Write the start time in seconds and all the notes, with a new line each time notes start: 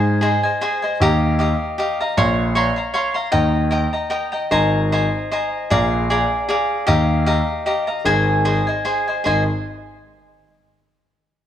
Already playing: G#2 G#4 C5 D#5 G#5
0.21 G#4 C5 D#5 G#5
0.43 C5 D#5 G#5
0.61 G#4 C5 D#5 G#5
0.82 C5 D#5 G#5
1.00 D#2 G4 D#5 F5 A#5
1.39 G4 D#5 F5 A#5
1.78 G4 D#5 F5 A#5
2.01 D#5 F5 A#5
2.17 A#1 C#5 F5 A#5 C6
2.55 C#5 F5 A#5 C6
2.76 F5 A#5 C6
2.94 C#5 F5 A#5 C6
3.14 F5 A#5 C6
3.32 D#2 A#4 D#5 G5 A#5
3.71 A#4 D#5 G5 A#5
3.93 D#5 G5 A#5
4.10 A#4 D#5 G5 A#5
4.32 D#5 G5 A#5
4.51 G#1 C5 D#5 G#5 A#5
4.92 C5 D#5 G#5 A#5
5.31 C5 D#5 G#5 A#5
5.70 A#1 G#4 D5 F5 A#5
6.10 G#4 D5 F5 A#5
6.49 G#4 D5 F5 A#5
6.87 D#2 G4 D#5 F5 A#5
7.26 G4 D#5 F5 A#5
7.66 G4 D#5 F5 A#5
7.87 D#5 F5 A#5
8.05 G#1 G#4 C5 D#5 G#5
8.45 G#4 C5 D#5 G#5
8.67 C5 D#5 G#5
8.85 G#4 C5 D#5 G#5
9.08 C5 D#5 G#5
9.24 G#1 G#4 C5 D#5 G#5